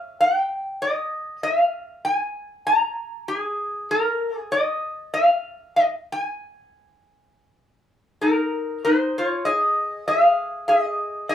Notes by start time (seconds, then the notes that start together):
Already playing: F5
0.21 G5
0.82 D#5
1.43 F5
2.05 G#5
2.67 A#5
3.28 G#4
3.91 A#4
4.38 G#4
4.52 D#5
5.14 F5
5.76 D#5
6.12 G#5
8.21 D#4 A#4
8.85 D#4 C5
9.18 F4 C#5
9.45 G#4 D#5
10.08 G#4 F5
10.68 G#4 D#5
11.29 G#4 F5